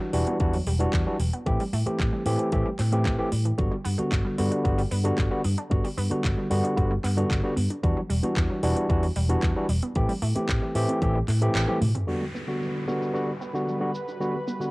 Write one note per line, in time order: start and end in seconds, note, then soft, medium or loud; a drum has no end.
0.00 0.10 E3 medium
0.00 0.12 F#3 medium
0.00 0.10 G3 medium
0.00 0.11 D4 medium
0.00 0.11 F#4 medium
0.13 0.23 E1 medium
0.13 0.37 E3 medium
0.13 0.37 G3 medium
0.13 0.19 G3 medium
0.13 0.37 D4 medium
0.13 0.37 F#4 medium
0.13 open hi-hat loud
0.27 0.35 B3 medium
0.27 closed hi-hat medium
0.40 0.59 E2 loud
0.40 0.56 E3 medium
0.40 0.48 E3 medium
0.40 0.56 G3 medium
0.40 0.56 D4 medium
0.40 0.56 F#4 medium
0.40 kick loud
0.40 closed hi-hat soft
0.53 0.59 F#3 loud
0.53 open hi-hat medium
0.66 0.85 E1 medium
0.66 0.79 G3 loud
0.66 open hi-hat loud
0.79 1.03 E3 medium
0.79 1.03 G3 medium
0.79 0.88 B3 medium
0.79 1.03 D4 medium
0.79 1.04 F#4 loud
0.79 closed hi-hat medium
0.93 1.03 E2 medium
0.93 1.01 E3 medium
0.93 kick loud
0.93 clap loud
0.93 closed hi-hat soft
1.06 1.16 E3 medium
1.06 1.18 F#3 medium
1.06 1.16 G3 medium
1.06 1.16 D4 medium
1.06 1.16 F#4 medium
1.19 1.29 E1 medium
1.19 1.25 G3 medium
1.19 open hi-hat loud
1.33 1.41 B3 medium
1.33 closed hi-hat medium
1.46 1.56 A1 medium
1.46 1.62 E3 medium
1.46 1.54 E3 medium
1.46 1.62 A3 medium
1.46 1.62 C4 medium
1.46 1.62 G4 medium
1.46 kick loud
1.46 closed hi-hat soft
1.60 1.65 G3 loud
1.60 open hi-hat medium
1.73 1.82 A2 medium
1.73 1.85 A3 loud
1.73 open hi-hat loud
1.86 2.23 E3 medium
1.86 2.23 A3 medium
1.86 2.23 C4 medium
1.86 1.94 C4 medium
1.86 2.23 G4 medium
1.86 muted fingered electric bass stroke soft
1.86 closed hi-hat medium
1.99 2.09 A1 medium
1.99 2.07 E3 medium
1.99 kick loud
1.99 clap loud
1.99 closed hi-hat soft
2.13 2.24 G3 medium
2.26 2.35 A2 medium
2.26 2.49 E3 medium
2.26 2.49 A3 medium
2.26 2.31 A3 medium
2.26 2.49 C4 medium
2.26 2.50 G4 medium
2.26 open hi-hat loud
2.39 2.47 C4 medium
2.39 closed hi-hat medium
2.52 2.62 A1 medium
2.52 2.68 E3 medium
2.52 2.60 E3 medium
2.52 2.68 A3 medium
2.52 2.68 C4 medium
2.52 2.68 G4 medium
2.52 kick loud
2.52 closed hi-hat medium
2.66 2.71 G3 loud
2.79 3.07 A2 medium
2.79 2.84 C4 medium
2.79 clap soft
2.79 open hi-hat loud
2.92 3.16 E3 medium
2.92 3.16 A3 medium
2.92 2.97 C4 medium
2.92 3.16 C4 medium
2.92 3.16 G4 medium
2.92 closed hi-hat medium
3.05 3.15 A1 medium
3.05 3.17 A3 medium
3.05 kick loud
3.05 clap loud
3.05 closed hi-hat soft
3.18 3.28 E3 medium
3.18 3.24 E3 loud
3.18 3.28 A3 medium
3.18 3.29 C4 medium
3.18 3.29 G4 medium
3.32 3.51 A2 medium
3.32 3.40 G3 medium
3.32 open hi-hat loud
3.45 3.53 E3 medium
3.45 closed hi-hat medium
3.58 3.68 G1 medium
3.58 3.74 D3 medium
3.58 3.66 F#3 medium
3.58 3.74 G3 medium
3.58 3.74 B3 medium
3.58 3.74 F#4 medium
3.58 kick loud
3.58 closed hi-hat soft
3.71 3.76 G3 loud
3.85 3.95 G2 medium
3.85 3.97 B3 loud
3.85 open hi-hat loud
3.98 4.35 D3 medium
3.98 4.35 G3 medium
3.98 4.35 B3 medium
3.98 4.06 D4 medium
3.98 4.36 F#4 medium
3.98 muted fingered electric bass stroke soft
3.98 closed hi-hat medium
4.11 4.21 G1 medium
4.11 4.19 F#3 medium
4.11 kick loud
4.11 clap loud
4.11 closed hi-hat soft
4.25 4.36 G3 medium
4.38 4.48 G2 medium
4.38 4.62 D3 medium
4.38 4.62 G3 medium
4.38 4.43 B3 medium
4.38 4.62 B3 medium
4.38 4.62 F#4 medium
4.38 open hi-hat loud
4.52 4.56 D4 medium
4.52 closed hi-hat medium
4.64 4.84 G1 loud
4.64 4.80 D3 medium
4.64 4.73 F#3 medium
4.64 4.80 G3 medium
4.64 4.80 B3 medium
4.64 4.81 F#4 medium
4.64 kick loud
4.64 closed hi-hat medium
4.78 4.83 G3 loud
4.78 open hi-hat medium
4.91 5.10 G2 medium
4.91 5.03 B3 loud
4.91 open hi-hat loud
5.04 5.28 D3 medium
5.04 5.28 G3 medium
5.04 5.28 B3 medium
5.04 5.12 D4 medium
5.04 5.28 F#4 loud
5.04 closed hi-hat medium
5.18 5.28 G1 medium
5.18 5.26 F#3 medium
5.18 kick loud
5.18 clap loud
5.18 closed hi-hat soft
5.30 5.40 D3 medium
5.30 5.41 G3 medium
5.30 5.43 G3 medium
5.30 5.41 B3 medium
5.30 5.41 F#4 medium
5.44 5.54 G2 medium
5.44 5.49 B3 medium
5.44 open hi-hat loud
5.58 5.63 D4 medium
5.58 closed hi-hat medium
5.70 5.81 G1 medium
5.70 5.86 D3 medium
5.70 5.79 F#3 medium
5.70 5.86 G3 medium
5.70 5.87 B3 medium
5.70 5.87 F#4 loud
5.70 kick loud
5.70 closed hi-hat soft
5.84 5.89 G3 loud
5.84 open hi-hat medium
5.97 6.07 G2 medium
5.97 6.09 B3 loud
5.97 open hi-hat loud
6.10 6.47 D3 medium
6.10 6.47 G3 medium
6.10 6.47 B3 medium
6.10 6.19 D4 medium
6.10 6.48 F#4 medium
6.10 muted fingered electric bass stroke soft
6.10 closed hi-hat medium
6.24 6.34 G1 medium
6.24 6.32 F#3 medium
6.24 kick loud
6.24 clap loud
6.24 closed hi-hat soft
6.38 6.49 G3 medium
6.50 6.60 G2 medium
6.50 6.74 D3 medium
6.50 6.74 G3 medium
6.50 6.74 B3 medium
6.50 6.56 B3 medium
6.50 6.74 F#4 medium
6.50 open hi-hat loud
6.64 6.69 D4 medium
6.64 closed hi-hat medium
6.76 6.96 G1 loud
6.76 6.92 D3 medium
6.76 6.85 F#3 medium
6.76 6.93 G3 medium
6.76 6.93 B3 medium
6.76 6.93 F#4 medium
6.76 kick loud
6.76 closed hi-hat medium
6.91 6.95 G3 loud
7.04 7.23 G2 medium
7.04 7.16 B3 loud
7.04 clap soft
7.04 open hi-hat loud
7.17 7.40 D3 medium
7.17 7.40 G3 medium
7.17 7.41 B3 medium
7.17 7.25 D4 medium
7.17 7.41 F#4 medium
7.17 closed hi-hat medium
7.30 7.40 G1 medium
7.30 7.38 F#3 medium
7.30 kick loud
7.30 clap loud
7.30 closed hi-hat medium
7.44 7.53 D3 medium
7.44 7.55 G3 medium
7.44 7.53 G3 medium
7.44 7.54 B3 medium
7.44 7.54 F#4 medium
7.57 7.66 G2 medium
7.57 7.61 B3 medium
7.57 open hi-hat loud
7.70 7.75 D4 medium
7.70 closed hi-hat medium
7.83 7.93 E2 medium
7.83 7.91 E3 medium
7.83 7.99 E3 medium
7.83 7.99 G3 medium
7.83 7.99 D4 medium
7.83 8.00 F#4 loud
7.83 kick loud
7.83 closed hi-hat medium
7.97 8.02 F#3 loud
8.10 8.19 E1 medium
8.10 8.22 G3 loud
8.10 open hi-hat loud
8.23 8.60 E3 medium
8.23 8.60 G3 medium
8.23 8.31 B3 medium
8.23 8.60 D4 medium
8.23 8.60 F#4 medium
8.23 muted fingered electric bass stroke soft
8.23 closed hi-hat medium
8.36 8.46 E2 medium
8.36 8.44 E3 medium
8.36 kick loud
8.36 clap loud
8.36 closed hi-hat medium
8.50 8.61 F#3 medium
8.63 8.73 E1 medium
8.63 8.86 E3 medium
8.63 8.68 G3 medium
8.63 8.87 G3 medium
8.63 8.87 D4 medium
8.63 8.87 F#4 loud
8.63 open hi-hat loud
8.76 8.81 B3 medium
8.76 closed hi-hat medium
8.89 9.08 E2 loud
8.89 8.97 E3 medium
8.89 9.05 E3 medium
8.89 9.05 G3 medium
8.89 9.06 D4 medium
8.89 9.06 F#4 medium
8.89 kick loud
8.89 closed hi-hat medium
9.03 9.08 F#3 loud
9.03 open hi-hat medium
9.16 9.35 E1 loud
9.16 9.28 G3 loud
9.16 open hi-hat loud
9.29 9.53 E3 medium
9.29 9.53 G3 medium
9.29 9.37 B3 medium
9.29 9.53 D4 medium
9.29 9.53 F#4 loud
9.29 closed hi-hat medium
9.42 9.52 E2 medium
9.42 9.51 E3 medium
9.42 kick loud
9.42 clap loud
9.42 closed hi-hat medium
9.56 9.66 E3 medium
9.56 9.68 F#3 medium
9.56 9.66 G3 medium
9.56 9.66 D4 medium
9.56 9.66 F#4 medium
9.69 9.79 E1 medium
9.69 9.74 G3 medium
9.69 open hi-hat loud
9.82 9.87 B3 medium
9.82 closed hi-hat medium
9.95 10.05 A1 loud
9.95 10.11 E3 medium
9.95 10.04 E3 medium
9.95 10.12 A3 medium
9.95 10.12 C4 medium
9.95 10.12 G4 medium
9.95 kick loud
9.95 closed hi-hat medium
10.09 10.14 G3 loud
10.09 open hi-hat medium
10.22 10.32 A2 medium
10.22 10.34 A3 loud
10.22 open hi-hat loud
10.35 10.72 E3 medium
10.35 10.72 A3 medium
10.35 10.43 C4 medium
10.35 10.72 C4 medium
10.35 10.73 G4 medium
10.35 muted fingered electric bass stroke soft
10.35 closed hi-hat medium
10.49 10.58 A1 medium
10.49 10.57 E3 medium
10.49 kick loud
10.49 clap loud
10.49 closed hi-hat medium
10.62 10.74 G3 medium
10.75 10.85 A2 medium
10.75 10.99 E3 medium
10.75 10.99 A3 medium
10.75 10.80 A3 medium
10.75 10.99 C4 medium
10.75 10.99 G4 loud
10.75 open hi-hat loud
10.89 10.94 C4 medium
10.89 closed hi-hat medium
11.01 11.21 A1 loud
11.01 11.17 E3 medium
11.01 11.10 E3 medium
11.01 11.18 A3 medium
11.01 11.18 C4 medium
11.01 11.18 G4 medium
11.01 kick loud
11.01 closed hi-hat medium
11.15 11.20 G3 loud
11.28 11.47 A2 loud
11.28 11.40 A3 loud
11.28 clap soft
11.28 open hi-hat loud
11.41 11.65 E3 medium
11.41 11.65 A3 medium
11.41 11.50 C4 medium
11.41 11.65 C4 medium
11.41 11.66 G4 loud
11.41 closed hi-hat medium
11.55 11.65 A1 medium
11.55 11.63 E3 medium
11.55 clap loud
11.55 closed hi-hat medium
11.68 11.78 E3 medium
11.68 11.80 G3 medium
11.68 11.78 A3 medium
11.68 11.78 C4 medium
11.68 11.78 G4 medium
11.68 high tom medium
11.81 11.91 A2 medium
11.81 11.86 A3 medium
11.81 open hi-hat loud
11.81 mid tom medium
11.95 12.00 C4 medium
11.95 closed hi-hat medium
11.95 mid tom medium
12.07 12.23 D3 medium
12.07 12.16 F#3 medium
12.07 12.24 G3 medium
12.07 14.71 G3 medium
12.07 12.24 B3 medium
12.07 14.71 F#4 medium
12.07 12.24 F#4 medium
12.07 14.71 B4 medium
12.07 downlifter medium
12.07 cabasa soft
12.22 12.26 G3 loud
12.35 12.47 B3 medium
12.35 cabasa medium
12.47 12.84 D3 medium
12.47 12.84 G3 medium
12.47 12.85 B3 medium
12.47 12.56 D4 medium
12.47 12.85 F#4 medium
12.47 cabasa soft
12.61 12.69 F#3 medium
12.61 cabasa soft
12.75 12.86 G3 medium
12.87 13.11 D3 medium
12.87 13.11 G3 medium
12.87 13.11 B3 medium
12.87 12.93 B3 medium
12.87 13.11 F#4 medium
12.87 cabasa medium
13.02 13.06 D4 medium
13.02 cabasa soft
13.13 13.30 D3 medium
13.13 13.22 F#3 medium
13.13 13.30 G3 medium
13.13 13.30 B3 medium
13.13 13.30 F#4 medium
13.13 cabasa soft
13.28 13.32 G3 medium
13.41 13.53 B3 loud
13.41 cabasa medium
13.54 13.77 D3 medium
13.54 13.78 G3 medium
13.54 13.78 B3 medium
13.54 13.62 D4 medium
13.54 13.78 F#4 medium
13.54 cabasa soft
13.68 13.75 F#3 medium
13.68 cabasa soft
13.80 13.90 D3 medium
13.80 13.90 G3 medium
13.80 13.93 G3 medium
13.80 13.90 B3 medium
13.80 13.91 F#4 medium
13.95 13.99 B3 medium
13.95 cabasa medium
14.08 14.12 D4 medium
14.08 cabasa soft
14.20 14.36 D3 medium
14.20 14.29 F#3 medium
14.20 14.36 G3 medium
14.20 14.36 B3 medium
14.20 14.36 F#4 medium
14.20 cabasa soft
14.35 14.39 G3 loud
14.48 14.59 B3 medium
14.48 cabasa medium
14.60 14.71 D3 medium
14.60 14.71 G3 medium
14.60 14.71 B3 medium
14.60 14.69 D4 medium
14.60 14.71 F#4 medium
14.60 cabasa soft